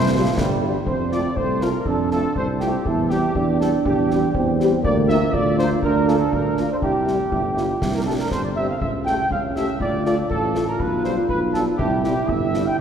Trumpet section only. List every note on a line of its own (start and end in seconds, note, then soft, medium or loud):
0.00 0.37 C5 medium
0.86 1.10 C5 medium
1.11 1.35 D5 medium
1.36 1.61 C5 medium
1.62 1.86 A#4 medium
1.86 2.10 A4 medium
2.11 2.34 A4 medium
2.36 2.47 C5 medium
2.59 2.83 G4 medium
2.86 3.10 A4 medium
3.09 3.56 G4 medium
3.60 3.71 A4 medium
3.86 4.55 G4 medium
4.84 4.95 D5 medium
5.09 5.32 E5 medium
5.34 5.58 D5 medium
5.57 5.68 C5 medium
5.83 6.06 A#4 medium
6.07 6.32 A4 medium
6.33 6.70 A#4 medium
6.72 6.77 C5 medium
6.83 7.90 G4 medium
7.94 8.00 A#4 soft
8.06 8.11 A4 medium
8.18 8.30 A#4 soft
8.30 8.42 C5 medium
8.43 8.49 D5 soft
8.56 8.67 E5 medium
8.68 8.80 F5 soft
8.80 8.91 E5 medium
9.05 9.28 G5 medium
9.31 9.42 F5 medium
9.56 9.78 E5 medium
9.81 10.03 D5 medium
10.05 10.16 D5 medium
10.30 10.64 A4 medium
10.68 10.79 A#4 soft
10.80 11.04 B4 medium
11.05 11.16 C5 medium
11.28 11.40 B4 medium
11.53 11.64 A4 medium
11.78 12.01 G4 medium
12.04 12.27 G4 medium
12.29 12.66 E5 medium
12.66 12.78 G5 medium